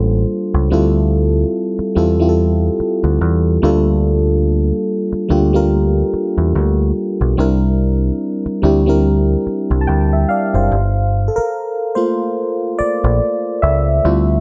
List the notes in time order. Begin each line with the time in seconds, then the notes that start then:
Already playing: A1 G3 A#3 D4 F4 A4 C5
0.54 C#2
0.70 D2 G3 C4 E4 F4 A4
1.79 muted picked electric bass stroke
1.95 E2 G3 C4 E4 F4 A4
2.19 G3 C4 E4 F4 G4
2.29 A4
2.80 muted picked electric bass stroke
3.04 D2
3.21 E2
3.62 D2 G3 A#3 D4 F4 A4
5.13 muted picked electric bass stroke
5.29 D2 G3 A#3 D4 F4 G4
5.53 G3 A#3 D4 F4 A#4
6.14 muted picked electric bass stroke
6.38 E2
6.55 D2
7.21 B1
7.37 C2 G3 C4 D4 E4 A#4
8.46 muted picked electric bass stroke
8.62 D2 G3 C4 D4 E4 G4
8.86 G3 C4 D4 E4 A#4
9.47 muted picked electric bass stroke
9.71 C2
9.81 A5
9.87 D2 G5
10.13 E5
10.29 D5 F5
10.54 F#1 C5
10.72 G1
11.28 A4
11.36 A#4, muted picked electric bass stroke
11.95 A3 A#3 F4 C5
12.79 D5, muted picked electric bass stroke
13.04 A#1
13.62 C#2 E5
14.04 D2 G3 C4 E4 F4